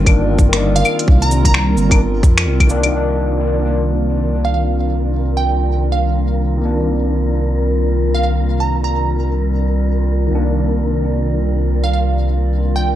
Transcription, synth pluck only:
0.76 F5
0.85 F5
1.22 A#5
1.45 A#5
4.45 F5
4.54 F5
5.37 G5
5.92 F5
8.15 F5
8.23 F5
8.60 A#5
8.84 A#5
11.84 F5
11.93 F5
12.76 G5

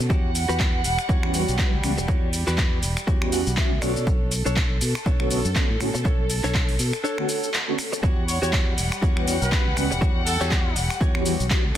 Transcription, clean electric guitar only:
0.10 F#4 G4 C#5
0.49 F#4 G4 B4
1.09 F#4 G4 C#5
1.98 muted clean electric guitar stroke
2.08 F#4 G4 C#5
2.47 F#4 G4 B4
3.07 F#4 G4 C#5
3.33 F#5
3.57 E5
3.82 D4 A4 C#5 D5
4.45 D4 A4 C#5
5.06 D4 A4 C#5
5.94 muted clean electric guitar stroke
6.05 D4 A4 C#5
6.44 D4 A4 C#5
7.04 D4 A4 C#5
7.92 muted clean electric guitar stroke
8.03 F#4 G4 C#5
8.42 F#4 G4 C#5
9.02 F#4 G4 C#5
9.91 muted clean electric guitar stroke
10.01 F#4 G4 C#5
10.41 F#4 G4 C#5
11.01 F#4 G4 C#5

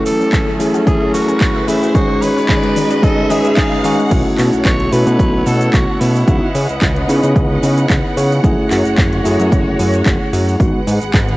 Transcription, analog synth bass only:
4.11 B1
4.39 B2
4.53 B1
4.65 B1
4.92 B2
5.07 B2
5.19 B1
5.46 B2
5.74 B1
6.01 B2
6.28 C#2
6.55 C#3
6.69 C#2
6.82 C#2
7.09 C#3
7.23 C#3
7.36 C#2
7.63 C#3
7.90 C#2
8.17 C#3
8.44 F#1
8.71 F#2
8.85 F#1
8.98 F#1
9.25 F#2
9.39 F#2
9.52 F#1
9.79 F#2
10.06 F#1
10.33 F#2
10.60 G#1
10.87 G#2
11.02 G#1
11.14 G#1

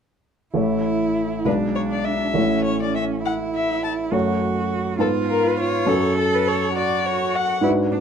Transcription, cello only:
0.56 E4
1.47 D4
2.36 C#4
3.24 E4
4.13 F#4
5.00 F4
5.89 A4
6.76 F#4
7.63 E4
7.92 D4

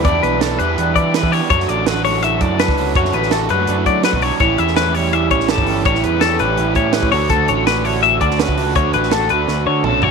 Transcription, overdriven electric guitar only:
0.04 E3 B3 E4 G4
0.41 E3 B3 E4 G4
0.59 B3 E4 G4
1.14 E3 B3 E4 G4
1.31 B3 E4 G4
1.50 F#3 A3 D4 F#4
1.87 F#3 A3 D4 F#4
2.05 A3 D4 F#4
2.59 F#3 A3 D4 F#4
2.77 A3 D4 F#4
2.95 F#3 A3 D4 F#4
3.31 F#3 A3 D4 F#4
3.49 A3 D4 F#4
4.04 F#3 A3 D4 F#4
4.21 A3 D4 F#4
4.40 A2 E3 G3 C#4 G4
4.76 A2 E3 G3 C#4 G4
4.96 G3 C#4 G4
5.49 E3 G3 C#4 G4
5.68 G3 C#4 G4
5.85 A2 E3 G3 C#4 G4
6.21 A2 E3 G3 C#4 G4
6.40 G3 C#4 G4
6.94 E3 G3 C#4 G4
7.12 D3 A3 D4 F#4
7.30 D3 A3 D4 F#4
7.65 D3 A3 D4 F#4
7.83 A3 D4 F#4
8.38 D3 A3 D4 F#4
8.57 A3 D4 F#4
8.74 D3 A3 D4 F#4
9.11 D3 A3 D4 F#4
9.29 A3 D4 F#4
9.84 D3 A3 D4 F#4
10.01 A3 D4 F#4

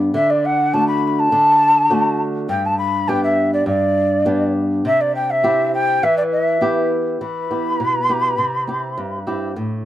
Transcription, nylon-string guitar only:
Already playing: G2 B3 D4 G4
0.14 D3
0.73 A3 D4 F#4
1.32 D3
1.90 A3 D4 F#4
2.49 G2
3.08 B3 D4 G4
3.66 G2
4.25 B3 D4 G4
4.85 C3
5.44 C4 E4 G4
6.03 E3
6.61 B3 E4 G4
7.21 E3
7.50 B3 E4 G4
7.80 B2
8.09 B3 E4 G4
8.38 C3
8.67 C4 E4 G4
8.98 G2
9.27 C4 E4 G4
9.56 A2

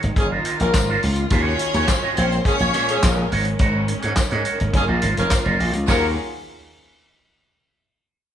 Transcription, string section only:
Already playing: D#3 G#3 C#4
0.16 A#3 F4
1.30 D#3 C#4 F#4 G#4
2.16 G#3 A#3 C#4
3.30 D#3 C#4
4.74 A#3 F4
5.88 D#3 C#4 F4 F#4 G#4

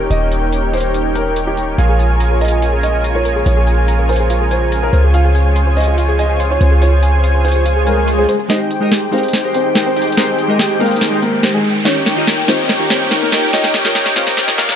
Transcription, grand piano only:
0.10 D#5
0.74 C5
1.15 A#4
1.47 G4
1.78 F5
2.41 D#5
2.83 D#5
3.15 C#5
3.46 C#5
4.09 C5
4.51 C5
4.83 A#4
5.14 F5
5.77 D#5
6.19 D#5
6.51 C#5
6.82 C#5
7.45 C5
7.87 A#4
8.18 G#4
8.50 D#4 D#5
9.13 C4 C5
9.55 C4 C5
9.86 C4 C5
10.17 C4 C5
10.80 A#3 A#4
11.22 A#3 A#4
11.54 G#3 G#4
11.85 C#4 C#5
12.48 C4 C5
12.90 C4 C5
13.22 A#3 A#4
13.53 D#4 D#5
14.16 C4 C5
14.58 A#3 A#4

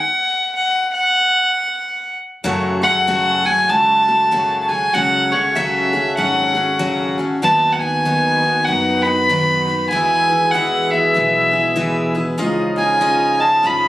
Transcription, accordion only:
2.45 A2 A3 F#4
4.94 C#3
7.44 D#3 B3
9.94 B2 G#3 E4
12.42 C#3 F3 D#4

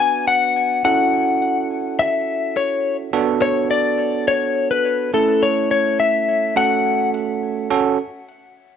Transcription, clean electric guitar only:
0.00 G#5
0.28 F#5
0.85 F#5
1.99 E5
2.57 C#5
3.42 C#5
3.71 D5
4.28 C#5
4.71 B4
5.14 A4
5.43 C#5
5.71 C#5
6.00 E5
6.57 F#5

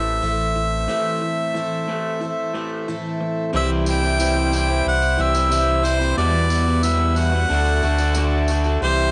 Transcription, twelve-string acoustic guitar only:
Already playing: A3 C4 E4
0.22 A2 E3 A3 C4 E4
0.88 A2 E3 A3 C4 E4
1.55 A2 E3 A3 C4 E4
1.89 A3 C4 E4
2.21 E3 A3 C4 E4
2.55 A3 C4 E4
2.88 A2 E3 A3 C4 E4
3.53 C3 E3 G3 C4 E4
4.19 E3 G3 C4 E4
4.52 G3 C4 E4
5.18 G3 C4 E4
5.51 E3 G3 C4 E4
6.18 E2 B2 E3 G3 B3 F#4
6.84 E3 G3 B3 F#4
7.17 E3 G3 B3 F#4
7.51 D3 A3 D4 F#4
7.83 A3 D4 F#4
8.17 D3 A3 D4 F#4
8.82 C3 E3 G3 C4 E4

